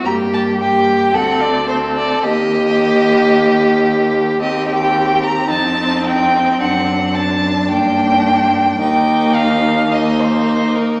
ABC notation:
X:1
M:4/4
L:1/8
Q:1/4=110
K:Eblyd
V:1 name="Violin"
b a g2 ^f d c d | e6- e z | e g2 b a2 g2 | ^f2 a2 g4 |
g2 f2 e c2 B |]
V:2 name="Violin"
G2 G2 A2 A2 | G8 | G4 E4 | D8 |
E4 E4 |]
V:3 name="Viola"
B,2 B,2 C2 C2 | B,8 | C8- | C4 B,4 |
B,4 B,4 |]
V:4 name="Cello" clef=bass
G,,4 D,,4 | E,,8 | E,,4 F,,4 | ^F,,4 G,,4 |
E,,8 |]